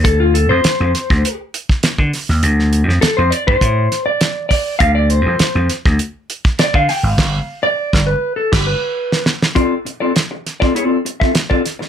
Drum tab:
CC |----------------|----------------|----------------|x--------x------|
HH |x-x-x-x-x-x-x-o-|x-x-x-x-x-x-x-o-|x-x-x-x-x-x-x-o-|----------------|
SD |----o-oo---oo-oo|-o-oo-----o-o-o-|----o-oo---oo-o-|o----o---o---ooo|
BD |o------o---o-o--|-------oo-----o-|o------o---o-o--|o----o---o------|

CC |----------------|
HH |x-x-x-x-x-x-x-x-|
SD |----o-oo---oo-oo|
BD |o------o---o-o--|